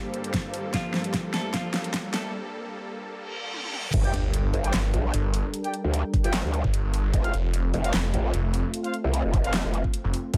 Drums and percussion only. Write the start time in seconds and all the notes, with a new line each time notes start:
0.14 closed hi-hat
0.24 closed hi-hat
0.34 kick, snare, closed hi-hat
0.54 open hi-hat
0.74 kick, snare, closed hi-hat
0.94 snare
1.04 closed hi-hat
1.14 kick, snare, closed hi-hat
1.34 snare, closed hi-hat
1.54 kick, snare, closed hi-hat
1.74 snare, closed hi-hat
1.84 closed hi-hat
1.94 kick, snare, closed hi-hat
2.14 snare, open hi-hat
3.54 high tom
3.64 high tom
3.74 mid tom
3.84 mid tom
3.94 kick, closed hi-hat, crash
4.04 closed hi-hat
4.14 closed hi-hat
4.34 closed hi-hat
4.54 open hi-hat
4.64 closed hi-hat
4.74 snare, clap, closed hi-hat
4.94 closed hi-hat
5.14 closed hi-hat
5.34 open hi-hat
5.54 closed hi-hat
5.64 closed hi-hat
5.74 closed hi-hat
5.94 closed hi-hat
6.14 kick, open hi-hat
6.24 closed hi-hat
6.34 snare, clap, closed hi-hat
6.54 closed hi-hat
6.64 kick
6.74 closed hi-hat
6.94 open hi-hat
7.14 kick, closed hi-hat
7.24 closed hi-hat
7.34 closed hi-hat
7.54 closed hi-hat
7.74 open hi-hat
7.84 closed hi-hat
7.94 snare, clap, closed hi-hat
8.14 closed hi-hat
8.34 closed hi-hat
8.54 open hi-hat
8.74 closed hi-hat
8.84 closed hi-hat
8.94 closed hi-hat
9.14 closed hi-hat
9.34 kick, open hi-hat
9.44 closed hi-hat
9.54 snare, clap, closed hi-hat
9.74 closed hi-hat
9.84 kick
9.94 closed hi-hat
10.14 open hi-hat
10.34 kick, closed hi-hat